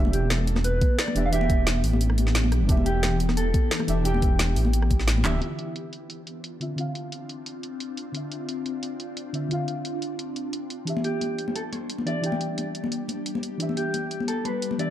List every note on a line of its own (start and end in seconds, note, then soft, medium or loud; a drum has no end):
0.00 0.80 E1 loud
0.00 1.13 E3 medium
0.00 5.38 E3 medium
0.00 5.38 B3 medium
0.00 1.13 D4 medium
0.00 2.65 D4 medium
0.00 1.14 G4 medium
0.00 5.38 G4 medium
0.00 1.15 E5 medium
0.05 high conga loud
0.13 0.31 G4 medium
0.13 closed hi-hat medium
0.30 0.64 A4 medium
0.30 snare loud
0.30 closed hi-hat medium
0.30 high conga medium
0.47 closed hi-hat medium
0.56 cross-stick soft
0.56 snare soft
0.56 high conga loud
0.64 1.00 B4 loud
0.64 closed hi-hat medium
0.81 kick loud
0.81 closed hi-hat medium
0.81 high conga medium
0.98 1.25 D5 loud
0.98 snare loud
0.98 closed hi-hat medium
1.07 cross-stick soft
1.07 high conga loud
1.15 1.31 E1 loud
1.15 1.29 E3 medium
1.15 1.31 D4 medium
1.15 1.31 G4 medium
1.15 1.31 E5 medium
1.15 closed hi-hat medium
1.26 1.32 F5 medium
1.30 1.83 E1 loud
1.30 2.15 E3 loud
1.30 2.16 D4 medium
1.30 2.16 G4 medium
1.30 1.80 E5 loud
1.30 closed hi-hat medium
1.35 2.17 G5 loud
1.41 high conga medium
1.50 kick loud
1.50 closed hi-hat medium
1.67 snare loud
1.67 closed hi-hat medium
1.67 high conga medium
1.84 2.53 A1 medium
1.84 open hi-hat medium
1.93 high conga loud
2.01 closed hi-hat medium
2.10 cross-stick soft
2.18 closed hi-hat medium
2.18 high conga medium
2.27 snare soft
2.35 snare loud
2.35 closed hi-hat loud
2.44 high conga medium
2.52 2.60 B1 medium
2.52 cross-stick soft
2.52 closed hi-hat medium
2.61 2.68 G1 loud
2.67 3.53 E1 loud
2.67 3.85 E3 medium
2.67 3.86 D4 medium
2.67 5.39 E4 medium
2.67 3.87 G4 medium
2.67 kick loud
2.67 closed hi-hat loud
2.71 3.88 E5 medium
2.77 high conga medium
2.86 3.18 G4 loud
2.86 closed hi-hat medium
3.03 snare loud
3.03 closed hi-hat loud
3.03 high conga medium
3.20 closed hi-hat medium
3.29 cross-stick soft
3.29 snare soft
3.29 high conga medium
3.37 4.05 A4 loud
3.37 closed hi-hat loud
3.54 kick loud
3.54 closed hi-hat medium
3.54 high conga medium
3.71 snare loud
3.71 closed hi-hat loud
3.80 cross-stick soft
3.80 high conga medium
3.87 4.04 E1 loud
3.87 4.02 E3 medium
3.87 4.03 D4 medium
3.87 4.04 G4 medium
3.87 4.04 E5 medium
3.87 closed hi-hat medium
4.03 4.55 E1 loud
4.03 4.87 E3 loud
4.03 4.88 D4 medium
4.03 5.21 G4 medium
4.03 4.89 G4 medium
4.03 closed hi-hat loud
4.08 4.90 G5 loud
4.14 high conga loud
4.22 kick loud
4.22 closed hi-hat medium
4.39 snare loud
4.39 closed hi-hat loud
4.39 high conga medium
4.56 5.24 A1 medium
4.56 open hi-hat medium
4.65 high conga loud
4.73 closed hi-hat loud
4.82 cross-stick soft
4.91 kick medium
4.91 closed hi-hat medium
4.91 high conga medium
5.00 snare soft
5.08 snare loud
5.08 closed hi-hat loud
5.18 high conga medium
5.23 5.40 D1 loud
5.23 5.39 E3 loud
5.23 5.40 D4 medium
5.23 5.40 G4 medium
5.23 5.40 E5 loud
5.23 clap medium
5.23 closed hi-hat medium
5.39 6.58 D3 medium
5.39 6.59 C4 medium
5.39 10.83 C4 medium
5.39 13.56 D4 medium
5.39 10.83 F4 medium
5.39 6.59 F4 medium
5.39 closed hi-hat medium
5.44 6.60 E5 medium
5.59 closed hi-hat medium
5.76 closed hi-hat medium
5.93 closed hi-hat medium
6.10 closed hi-hat medium
6.27 closed hi-hat medium
6.44 closed hi-hat medium
6.60 6.74 D3 medium
6.60 6.76 C4 medium
6.60 6.76 F4 medium
6.60 6.77 E5 medium
6.60 closed hi-hat medium
6.76 7.60 D3 medium
6.76 7.61 C4 medium
6.76 7.62 F4 medium
6.76 closed hi-hat medium
6.80 7.62 F5 loud
6.95 closed hi-hat medium
7.12 closed hi-hat medium
7.29 closed hi-hat medium
7.46 closed hi-hat medium
7.63 closed hi-hat medium
7.80 closed hi-hat medium
7.97 closed hi-hat medium
8.12 9.31 D3 medium
8.12 9.31 C4 medium
8.12 9.32 F4 medium
8.12 closed hi-hat medium
8.17 9.33 E5 medium
8.32 closed hi-hat medium
8.49 closed hi-hat medium
8.66 closed hi-hat medium
8.83 closed hi-hat medium
9.00 closed hi-hat medium
9.17 closed hi-hat medium
9.33 9.47 D3 medium
9.33 9.49 C4 medium
9.33 9.49 F4 medium
9.33 9.50 E5 medium
9.33 closed hi-hat medium
9.49 10.33 D3 medium
9.49 10.34 C4 medium
9.49 10.35 F4 medium
9.49 closed hi-hat medium
9.53 10.35 F5 loud
9.68 closed hi-hat medium
9.85 closed hi-hat medium
10.02 closed hi-hat medium
10.19 closed hi-hat medium
10.36 closed hi-hat medium
10.53 closed hi-hat medium
10.70 closed hi-hat medium
10.85 12.03 E3 medium
10.85 14.90 G3 medium
10.85 12.04 D4 medium
10.85 14.90 G4 medium
10.85 12.05 G4 medium
10.85 closed hi-hat medium
10.90 12.06 E5 medium
10.97 high conga medium
11.04 11.57 G4 medium
11.04 closed hi-hat medium
11.21 closed hi-hat medium
11.21 high conga medium
11.38 closed hi-hat medium
11.48 high conga medium
11.56 11.61 A4 medium
11.56 closed hi-hat medium
11.72 12.06 C5 loud
11.72 closed hi-hat medium
11.72 high conga medium
11.90 closed hi-hat medium
11.98 high conga medium
12.05 12.20 E3 medium
12.05 12.21 D4 medium
12.05 12.22 G4 medium
12.05 13.39 D5 medium
12.05 12.22 E5 medium
12.05 closed hi-hat medium
12.21 13.06 E3 medium
12.21 13.06 D4 medium
12.21 13.07 G4 medium
12.21 closed hi-hat medium
12.26 13.08 G5 loud
12.32 high conga medium
12.41 closed hi-hat medium
12.58 closed hi-hat medium
12.58 high conga medium
12.75 closed hi-hat medium
12.84 high conga medium
12.92 closed hi-hat medium
13.08 closed hi-hat medium
13.08 high conga medium
13.26 closed hi-hat medium
13.35 high conga medium
13.43 closed hi-hat medium
13.58 14.76 E3 medium
13.58 14.77 D4 medium
13.58 14.90 E4 medium
13.58 14.78 G4 medium
13.58 closed hi-hat medium
13.62 14.79 E5 medium
13.69 high conga medium
13.77 14.30 G4 medium
13.77 closed hi-hat medium
13.94 closed hi-hat medium
13.94 high conga medium
14.11 closed hi-hat medium
14.20 high conga medium
14.28 14.45 A4 medium
14.28 closed hi-hat medium
14.45 14.79 B4 medium
14.45 closed hi-hat medium
14.45 high conga medium
14.62 closed hi-hat medium
14.71 high conga medium
14.78 14.90 E3 medium
14.78 14.90 D4 medium
14.78 14.90 G4 medium
14.78 14.90 D5 medium
14.78 14.90 E5 medium
14.78 closed hi-hat medium